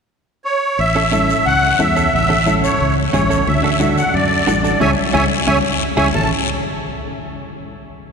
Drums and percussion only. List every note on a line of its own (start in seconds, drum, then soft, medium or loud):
0.79 high conga soft
0.79 long guiro medium
1.13 high conga medium
1.13 short guiro medium
1.30 short guiro medium
1.46 high conga soft
1.46 long guiro medium
1.80 high conga medium
1.80 short guiro medium
1.97 short guiro medium
2.13 high conga soft
2.13 long guiro medium
2.30 low conga medium
2.46 high conga medium
2.46 short guiro medium
2.64 short guiro medium
2.81 high conga soft
2.81 long guiro medium
3.14 high conga medium
3.14 low conga medium
3.14 short guiro medium
3.31 short guiro medium
3.47 high conga soft
3.47 long guiro medium
3.81 high conga medium
3.81 short guiro medium
3.98 short guiro medium
4.14 high conga soft
4.14 long guiro medium
4.48 high conga medium
4.48 short guiro medium
4.65 short guiro medium
4.81 high conga medium
4.81 long guiro medium
5.15 high conga loud
5.15 long guiro loud
5.48 high conga medium
5.48 long guiro medium
5.98 high conga loud
5.98 long guiro loud
6.14 low conga medium
6.14 long guiro medium